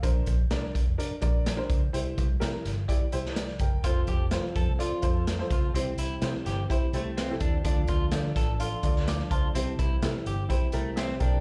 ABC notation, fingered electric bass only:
X:1
M:4/4
L:1/16
Q:1/4=126
K:Cmix
V:1 name="Fingered electric bass" clef=bass
B,,,2 B,,,2 C,,3 F,,, z2 B,,,4 _D,,2 | C,,2 C,,2 C,2 G,,,2 z2 C,,4 _G,,,2 | F,,,2 F,,,3 z F,, C,, z2 F,,4 _D,,2 | C,,2 C,,2 C,2 G,,,2 z2 C,,4 _E,,2 |
D,,2 D,,2 D,2 A,,,4 D,,4 _D,,2 | C,,2 C,,2 C,2 G,,,2 z2 C,,4 =B,,,2 |]